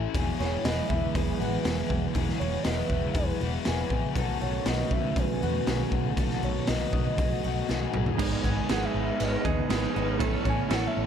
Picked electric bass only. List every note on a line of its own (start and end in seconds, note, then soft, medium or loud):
0.15 0.30 E1 medium
0.40 0.56 E1 medium
0.65 0.80 E1 loud
0.90 1.05 E1 medium
1.15 1.31 E1 loud
1.40 1.56 A1 medium
1.66 1.81 E1 loud
1.90 2.06 E1 medium
2.15 2.30 E1 medium
2.41 2.56 E1 medium
2.66 2.81 E1 medium
2.90 3.06 E1 medium
3.15 3.31 E1 medium
3.41 3.57 E1 medium
3.67 3.82 E1 medium
3.90 4.06 A1 medium
4.15 4.31 B1 medium
4.42 4.57 B1 medium
4.67 4.82 B1 medium
4.91 5.07 B1 medium
5.16 5.32 B1 loud
5.43 5.58 E2 medium
5.67 5.83 B1 medium
5.92 6.08 B1 medium
6.17 6.33 B1 medium
6.43 6.58 B1 medium
6.69 6.84 B1 medium
6.93 7.09 B1 medium
7.18 7.34 B1 loud
7.45 7.60 B1 medium
7.70 7.85 B1 medium
7.95 8.10 B1 medium
8.20 8.35 G#1 medium
8.44 8.59 G#1 medium
8.70 8.85 G#1 loud
8.95 9.10 G#1 medium
9.21 9.35 G#1 loud
9.45 9.60 D#2 medium
9.71 9.86 G#1 loud
9.96 10.20 G#1 medium
10.20 10.36 A1 medium
10.45 10.60 A1 medium
10.71 10.86 A1 loud
10.97 11.06 A1 medium